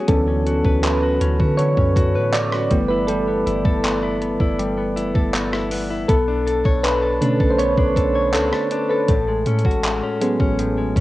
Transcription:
Already playing: A3 F#4 G#4 C#5
0.08 D2 D3 E3 F#3 B3 C#4 A4, kick, closed hi-hat
0.28 C#4
0.47 F#4, closed hi-hat
0.65 D2 B4, kick
0.83 C#4 B4, clap, closed hi-hat
1.03 F#4
1.21 D2 C#4, closed hi-hat
1.40 D3 F#4, kick
1.57 D3 C#5, closed hi-hat
1.77 F#2 C#4, kick
1.96 F#4, kick, closed hi-hat
2.15 A2 B4
2.33 C#4 D5, clap, closed hi-hat
2.52 F#4, cross-stick
2.71 G1 E3 G3 A3 B3, kick, closed hi-hat
2.88 E4 B4
3.07 G3 A4, closed hi-hat
3.28 B3
3.46 G1 E4, closed hi-hat
3.65 G1 A4, kick
3.84 B3, clap, closed hi-hat
4.03 E4
4.22 B3, closed hi-hat
4.40 G1 E4, kick
4.59 G3, closed hi-hat
4.78 B3
4.96 F#1 E4, closed hi-hat
5.15 G1 A4, kick
5.34 B3, clap, closed hi-hat
5.53 E4, cross-stick
5.71 B3, open hi-hat
5.90 E4
6.08 B1 B3 A4, kick, closed hi-hat
6.28 D4
6.47 A4, closed hi-hat
6.65 B1 C#5, kick
6.83 D4 B4, clap, closed hi-hat
7.02 A4
7.21 B2 D3 A3 C#4 D4, closed hi-hat
7.40 B1 A4, kick
7.50 C5
7.58 B3 C#5, closed hi-hat
7.78 B1 D4, kick
7.96 A4, kick, closed hi-hat
8.15 C#5
8.33 C#2 D4 A4, clap, closed hi-hat
8.53 A4, cross-stick
8.71 D4, closed hi-hat
8.89 A4 B4
9.08 A1 A2 A4, kick, closed hi-hat
9.28 G#3
9.46 A2 C#4, closed hi-hat
9.59 closed hi-hat
9.65 A1 F#4, kick
9.71 closed hi-hat
9.83 G#3, clap, closed hi-hat
10.03 C#4
10.21 F#3 G#3 B3 C#4 G#4, closed hi-hat
10.40 A1 C#4, kick
10.59 A2, closed hi-hat
10.78 G#3
10.96 E2 C#4, kick, closed hi-hat

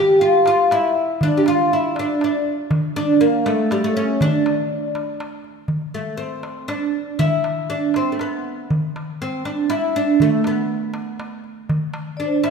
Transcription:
Already playing: G4 G5
0.13 G5
0.19 F4 F5
0.46 F4 F5, darbuka tek
0.71 E4 E5, darbuka tek
0.97 darbuka ka
1.21 D4 D5, darbuka dum
1.33 darbuka ka
1.37 G4
1.46 F4 F5, darbuka tek
1.72 E4 E5
1.95 D5, darbuka tek
1.99 D4
2.15 E5
2.21 D4 D5, darbuka tek
2.47 darbuka ka
2.71 darbuka dum
2.83 darbuka ka
2.96 D4 D5, darbuka tek
3.21 A#3 A#4
3.46 A3 A4, darbuka tek
3.71 G3 G4, darbuka tek
3.84 A3 A4
3.94 C#4 C#5, darbuka ka
4.21 D4 D5, darbuka dum
4.46 darbuka tek
4.95 darbuka tek
5.20 darbuka tek
5.44 darbuka ka
5.68 darbuka dum
5.81 darbuka ka
5.94 A3
6.17 C4
6.43 darbuka tek
6.68 D4, darbuka tek
6.95 darbuka ka
7.19 E4, darbuka dum
7.32 darbuka ka
7.44 darbuka tek
7.70 D4
7.94 C4, darbuka tek
8.12 A3
8.19 B3, darbuka tek
8.46 darbuka ka
8.70 darbuka dum
8.83 darbuka ka
8.96 darbuka tek
9.22 C4
9.45 D4, darbuka tek
9.70 E4, darbuka tek
9.96 D4, darbuka ka
10.20 A3, darbuka dum
10.32 darbuka ka
10.44 B3, darbuka tek
10.94 darbuka tek
11.20 darbuka tek
11.44 darbuka ka
11.69 darbuka dum
11.81 darbuka ka
11.94 darbuka tek
12.17 D4 D5
12.26 C5
12.33 D5
12.44 E4, darbuka tek

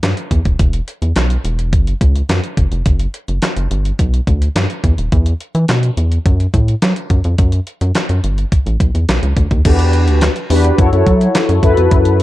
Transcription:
0.03 G2, snare, clap, closed hi-hat
0.17 closed hi-hat
0.31 E2, kick, closed hi-hat
0.45 D#1, kick, closed hi-hat
0.59 E1, kick, closed hi-hat
0.73 closed hi-hat
0.88 closed hi-hat
1.02 E2, closed hi-hat
1.16 B1, snare, clap, closed hi-hat
1.30 closed hi-hat
1.44 E1, closed hi-hat
1.59 closed hi-hat
1.73 F#1, kick, closed hi-hat
1.87 closed hi-hat
2.01 C#2, kick, closed hi-hat
2.15 closed hi-hat
2.29 F#2, snare, clap, closed hi-hat
2.44 closed hi-hat
2.57 F#1, kick, closed hi-hat
2.72 F1, closed hi-hat
2.86 F#1, kick, closed hi-hat
2.99 closed hi-hat
3.14 closed hi-hat
3.28 F#1, closed hi-hat
3.42 snare, clap, closed hi-hat
3.57 F#1, closed hi-hat
3.71 G1, closed hi-hat
3.85 closed hi-hat
3.99 B1, kick, closed hi-hat
4.14 closed hi-hat
4.27 D2, kick, closed hi-hat
4.42 closed hi-hat
4.56 G2, snare, clap, closed hi-hat
4.70 closed hi-hat
4.84 E2, kick, closed hi-hat
4.98 D#1, closed hi-hat
5.12 E2, kick, closed hi-hat
5.26 closed hi-hat
5.40 closed hi-hat
5.55 E3, closed hi-hat
5.68 B2, snare, clap, closed hi-hat
5.83 closed hi-hat
5.97 E2, closed hi-hat
6.12 closed hi-hat
6.26 F#2, kick, closed hi-hat
6.40 closed hi-hat
6.54 A2, kick, closed hi-hat
6.68 closed hi-hat
6.82 F#3, snare, clap, closed hi-hat
6.96 closed hi-hat
7.10 F#2, kick, closed hi-hat
7.24 F2, closed hi-hat
7.38 F#2, kick, closed hi-hat
7.52 closed hi-hat
7.67 closed hi-hat
7.81 F#2, closed hi-hat
7.95 snare, clap, closed hi-hat
8.09 F#2, closed hi-hat
8.24 G1, closed hi-hat
8.38 closed hi-hat
8.52 kick, closed hi-hat
8.66 A1, closed hi-hat
8.80 B1, kick, closed hi-hat
8.95 E2, closed hi-hat
9.09 B1, snare, clap, closed hi-hat
9.23 C#2, closed hi-hat
9.37 D2, kick, closed hi-hat
9.51 D#2, kick, closed hi-hat
9.65 E2 D4 F#4 G4 A4, kick, closed hi-hat, crash
9.72 B4
9.79 closed hi-hat
9.93 closed hi-hat
10.08 D2, closed hi-hat
10.21 snare, clap, closed hi-hat
10.36 closed hi-hat
10.50 E2 D4 F#4 G4 B4, open hi-hat
10.64 closed hi-hat
10.78 F#2 E4 F#4 A4 C#5, kick, closed hi-hat
10.92 F#2 E4 F#4 A4 C#5, closed hi-hat
11.06 F#3, kick, closed hi-hat
11.21 closed hi-hat
11.35 snare, clap, closed hi-hat
11.49 F#2, closed hi-hat
11.63 F#2 E4 F#4 A4 B4, kick, closed hi-hat
11.77 F2, closed hi-hat
11.91 F#2, kick, closed hi-hat
12.05 closed hi-hat
12.20 closed hi-hat

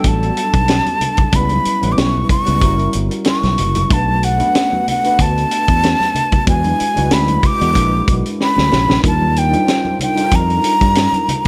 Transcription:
Already playing: F#3 G3 B3 D4 F#4 A4
0.04 A1 A5, kick, closed hi-hat
0.23 closed hi-hat
0.37 closed hi-hat
0.54 B1, kick, closed hi-hat
0.68 snare, closed hi-hat
0.86 closed hi-hat, high conga
1.01 closed hi-hat, muted conga, low conga
1.17 kick, closed hi-hat, high conga, low conga
1.32 C#2 G3 B3 C#4 E4 B4 B5, kick, closed hi-hat, muted conga
1.49 closed hi-hat, high conga
1.65 muted fingered electric bass stroke, closed hi-hat
1.81 A1 G3 B3 C#4 E4 B4, closed hi-hat, high conga
1.92 D6
1.97 B1 C#6, snare, closed hi-hat, muted conga
2.15 high conga
2.29 C#6, kick, closed hi-hat, muted conga, low conga
2.45 C#2 G3 B3 C#4 E4 B4, closed hi-hat
2.61 F#1 G3 C#4 E4 F#4 A#4, kick, closed hi-hat, muted conga
2.79 closed hi-hat
2.93 G1, closed hi-hat, muted conga
3.11 closed hi-hat
3.25 snare, closed hi-hat, muted conga
3.29 C#6
3.43 B1, snare, closed hi-hat, high conga
3.58 F#1, closed hi-hat, low conga
3.75 closed hi-hat, high conga, low conga
3.89 B1 A3 B3 D4 F#4 B4, kick, closed hi-hat, muted conga
3.93 A5
4.08 high conga
4.23 F#5, closed hi-hat, muted conga
4.37 A3 B3 D4 F#4 B4, closed hi-hat, high conga
4.55 snare, closed hi-hat, muted conga
4.73 high conga
4.88 F#5, closed hi-hat, low conga
5.03 A3 B3 D4 F#4 B4, closed hi-hat
5.19 D2 A5, kick, closed hi-hat
5.38 closed hi-hat
5.51 closed hi-hat
5.68 E2, kick, closed hi-hat
5.83 snare, closed hi-hat, muted conga
6.00 snare, high conga
6.15 closed hi-hat, muted conga, low conga
6.32 kick, closed hi-hat, high conga, low conga
6.46 E2 G#3 D4 E4 F#4 B4 G#5, kick, closed hi-hat, muted conga
6.64 closed hi-hat, high conga
6.79 muted fingered electric bass stroke, closed hi-hat, muted conga
6.95 C#2 G#3 D4 E4 F#4 B4, closed hi-hat, high conga
7.10 D2 B5, snare, closed hi-hat, muted conga
7.28 closed hi-hat, high conga
7.43 D6, kick, closed hi-hat, muted conga, low conga
7.60 E2 G#3 D4 E4 F#4 A#4, closed hi-hat
7.68 B4
7.74 A#1, kick, closed hi-hat, muted conga
8.08 B1, kick, closed hi-hat, muted conga
8.26 closed hi-hat
8.40 B5, snare
8.57 D2, snare, high conga
8.72 A#1, snare, muted conga, low conga
8.88 snare, high conga, low conga
9.02 D#2 G3 D4 D#4 F4 A#4, kick, closed hi-hat
9.07 A5
9.21 high conga
9.36 G5, closed hi-hat
9.50 G3 D4 D#4 F4 C5, closed hi-hat, high conga
9.68 snare, closed hi-hat
9.85 high conga
9.99 G5, closed hi-hat, low conga
10.15 G3 D4 D#4 F4 A4, closed hi-hat
10.24 A#4
10.31 F2, kick, closed hi-hat, muted conga
10.35 A#5
10.50 closed hi-hat
10.64 closed hi-hat, muted conga
10.81 G2, kick, closed hi-hat
10.95 snare, closed hi-hat, muted conga
11.13 closed hi-hat, high conga
11.29 closed hi-hat, muted conga, low conga
11.45 closed hi-hat

